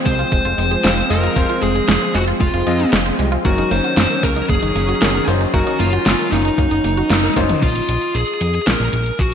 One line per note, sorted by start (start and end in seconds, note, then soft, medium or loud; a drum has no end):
0.00 3.41 F3 medium
0.00 0.81 G#3 medium
0.00 3.41 G#3 medium
0.00 0.81 C4 medium
0.00 3.41 C4 medium
0.00 0.81 F4 medium
0.00 0.81 C5 loud
0.06 0.25 C2 loud
0.06 0.18 G#3 loud
0.06 1.13 C5 loud
0.06 kick loud
0.06 open hi-hat medium
0.06 tambourine medium
0.19 0.29 F4 loud
0.19 closed hi-hat soft
0.19 tambourine soft
0.32 0.41 F1 loud
0.32 0.42 G#3 loud
0.32 kick loud
0.32 closed hi-hat medium
0.32 tambourine soft
0.45 0.54 F1 medium
0.45 0.55 F4 loud
0.45 closed hi-hat soft
0.58 0.77 F1 medium
0.58 0.70 G#3 medium
0.58 open hi-hat medium
0.58 tambourine medium
0.71 0.84 G#4 medium
0.71 closed hi-hat soft
0.71 tambourine soft
0.84 1.03 F1 loud
0.84 1.07 G#3 medium
0.84 0.94 G#3 loud
0.84 1.07 C4 medium
0.84 1.07 F4 medium
0.84 1.07 C5 medium
0.84 snare loud
0.84 closed hi-hat medium
0.84 tambourine soft
0.97 1.10 C5 medium
0.97 closed hi-hat soft
1.10 1.29 F1 medium
1.10 1.23 G#3 loud
1.10 1.33 G#3 medium
1.10 1.33 C4 medium
1.10 1.33 F4 medium
1.10 1.62 A#4 loud
1.10 1.33 D#5 loud
1.10 open hi-hat medium
1.10 tambourine medium
1.23 1.33 F4 loud
1.23 closed hi-hat soft
1.23 tambourine soft
1.36 1.46 F1 medium
1.36 2.64 G#3 medium
1.36 1.46 G#3 loud
1.36 2.64 C4 medium
1.36 2.64 F4 medium
1.36 2.64 C5 loud
1.36 kick loud
1.36 closed hi-hat medium
1.36 tambourine soft
1.49 1.59 F4 loud
1.49 closed hi-hat soft
1.62 1.81 F1 medium
1.62 1.75 G#3 medium
1.62 2.16 G#4 loud
1.62 open hi-hat medium
1.62 tambourine medium
1.75 1.88 G#4 medium
1.75 closed hi-hat soft
1.75 tambourine soft
1.88 1.98 F1 loud
1.88 1.98 G#3 loud
1.88 snare loud
1.88 closed hi-hat medium
1.88 tambourine soft
2.01 2.14 C5 medium
2.01 closed hi-hat soft
2.15 2.33 F1 medium
2.15 2.27 G#3 loud
2.15 2.22 F#4 medium
2.15 snare soft
2.15 open hi-hat medium
2.15 tambourine medium
2.28 2.37 F4 loud
2.28 closed hi-hat soft
2.28 tambourine soft
2.41 2.50 F1 medium
2.41 2.50 G#3 loud
2.41 2.89 F4 medium
2.41 kick loud
2.41 closed hi-hat medium
2.41 tambourine soft
2.54 2.63 F1 loud
2.54 2.63 F4 loud
2.54 closed hi-hat soft
2.67 2.85 F2 loud
2.67 2.79 G#3 medium
2.67 3.42 G#3 medium
2.67 3.42 C4 medium
2.67 3.42 F4 medium
2.67 3.42 D#5 medium
2.67 open hi-hat medium
2.67 tambourine medium
2.80 2.92 G#4 medium
2.80 closed hi-hat soft
2.80 tambourine soft
2.93 3.12 F1 loud
2.93 3.03 G#3 loud
2.93 snare loud
2.93 closed hi-hat medium
2.93 tambourine soft
3.06 3.18 C5 medium
3.06 closed hi-hat soft
3.19 3.38 C2 loud
3.19 3.31 G#3 loud
3.19 open hi-hat medium
3.19 tambourine medium
3.32 3.42 F4 loud
3.32 closed hi-hat soft
3.32 tambourine soft
3.45 3.64 F#1 loud
3.45 7.58 D#3 medium
3.45 4.98 F#3 medium
3.45 7.58 F#3 medium
3.45 3.55 A#3 loud
3.45 4.98 C#4 medium
3.45 7.58 C#4 medium
3.45 4.98 D#4 medium
3.45 3.69 F#4 loud
3.45 4.98 A#4 loud
3.45 kick loud
3.45 closed hi-hat medium
3.45 tambourine soft
3.58 3.68 D#4 loud
3.58 closed hi-hat soft
3.71 3.81 F#1 loud
3.71 3.84 A#3 medium
3.71 4.25 C5 loud
3.71 open hi-hat medium
3.71 tambourine medium
3.84 3.97 F#4 medium
3.84 closed hi-hat soft
3.84 tambourine soft
3.97 4.07 F#1 medium
3.97 4.07 A#3 loud
3.97 snare loud
3.97 closed hi-hat medium
3.97 tambourine soft
4.10 4.23 A#4 medium
4.10 closed hi-hat soft
4.23 4.42 C#2 loud
4.23 4.36 A#3 loud
4.23 4.49 A#4 loud
4.23 kick loud
4.23 open hi-hat medium
4.23 tambourine medium
4.36 4.46 D#4 loud
4.36 closed hi-hat soft
4.36 tambourine soft
4.49 4.59 F#1 medium
4.49 4.59 A#3 loud
4.49 5.24 G#4 medium
4.49 kick loud
4.49 closed hi-hat medium
4.49 tambourine soft
4.62 4.72 F#1 medium
4.62 4.72 D#4 loud
4.62 closed hi-hat soft
4.75 4.94 F#1 medium
4.75 4.88 A#3 medium
4.75 open hi-hat medium
4.75 tambourine medium
4.89 5.01 F#4 medium
4.89 closed hi-hat soft
4.89 tambourine soft
5.02 5.20 F#1 loud
5.02 5.25 F#3 medium
5.02 5.11 A#3 loud
5.02 5.25 C#4 medium
5.02 5.25 D#4 medium
5.02 5.25 A#4 medium
5.02 snare loud
5.02 closed hi-hat medium
5.02 tambourine soft
5.15 5.27 A#4 medium
5.15 closed hi-hat soft
5.28 5.46 F#1 medium
5.28 5.51 F#3 medium
5.28 5.40 A#3 loud
5.28 5.51 C#4 medium
5.28 5.51 D#4 medium
5.28 5.51 C5 loud
5.28 open hi-hat medium
5.28 tambourine medium
5.41 5.50 D#4 loud
5.41 closed hi-hat soft
5.41 tambourine soft
5.54 5.63 F#1 medium
5.54 6.81 F#3 medium
5.54 5.63 A#3 loud
5.54 6.81 C#4 medium
5.54 6.81 D#4 medium
5.54 5.80 F#4 loud
5.54 6.81 A#4 loud
5.54 kick loud
5.54 closed hi-hat medium
5.54 tambourine soft
5.67 5.76 D#4 loud
5.67 closed hi-hat soft
5.80 5.99 F#1 medium
5.80 5.92 A#3 medium
5.80 6.32 F4 loud
5.80 open hi-hat medium
5.80 tambourine medium
5.93 6.05 F#4 medium
5.93 closed hi-hat soft
5.93 tambourine soft
6.06 6.15 F#1 loud
6.06 6.16 A#3 loud
6.06 snare loud
6.06 closed hi-hat medium
6.06 tambourine soft
6.19 6.31 A#4 medium
6.19 closed hi-hat soft
6.32 6.51 F#1 medium
6.32 6.44 A#3 loud
6.32 7.32 D#4 medium
6.32 snare soft
6.32 open hi-hat medium
6.32 tambourine medium
6.45 6.55 D#4 loud
6.45 closed hi-hat soft
6.45 tambourine soft
6.58 6.67 F#2 medium
6.58 6.68 A#3 loud
6.58 kick loud
6.58 closed hi-hat medium
6.58 tambourine soft
6.71 6.81 F#1 medium
6.71 6.81 D#4 loud
6.71 closed hi-hat soft
6.71 tambourine soft
6.84 7.03 F#1 medium
6.84 6.97 A#3 medium
6.84 open hi-hat medium
6.84 tambourine medium
6.97 7.10 F#4 medium
6.97 closed hi-hat soft
6.97 tambourine soft
7.10 7.29 F#1 medium
7.10 7.20 A#3 loud
7.10 snare loud
7.10 closed hi-hat medium
7.10 tambourine soft
7.23 7.36 A#4 medium
7.23 closed hi-hat soft
7.23 tambourine soft
7.36 7.55 F#1 loud
7.36 7.59 F#3 medium
7.36 7.49 A#3 loud
7.36 7.59 C#4 medium
7.36 7.59 D#4 medium
7.36 7.59 C5 loud
7.36 kick medium
7.36 open hi-hat medium
7.36 high tom medium
7.36 tambourine medium
7.49 7.59 D#4 loud
7.49 closed hi-hat soft
7.49 mid tom medium
7.49 tambourine soft
7.63 7.81 A#1 loud
7.63 8.16 F4 medium
7.63 kick loud
7.63 closed hi-hat medium
7.63 crash medium
7.76 closed hi-hat soft
7.89 7.98 A#1 loud
7.89 closed hi-hat medium
8.02 closed hi-hat soft
8.15 8.24 A#1 medium
8.15 8.67 G#4 loud
8.15 closed hi-hat medium
8.28 closed hi-hat soft
8.41 8.59 F2 loud
8.41 closed hi-hat medium
8.54 closed hi-hat soft
8.67 8.76 A#1 medium
8.67 9.21 A#4 loud
8.67 snare loud
8.67 closed hi-hat medium
8.80 8.89 A#1 medium
8.80 closed hi-hat soft
8.93 9.12 A#1 medium
8.93 closed hi-hat medium
9.06 closed hi-hat soft
9.19 9.34 A#1 medium
9.19 9.34 F#4 medium
9.19 kick loud
9.19 closed hi-hat medium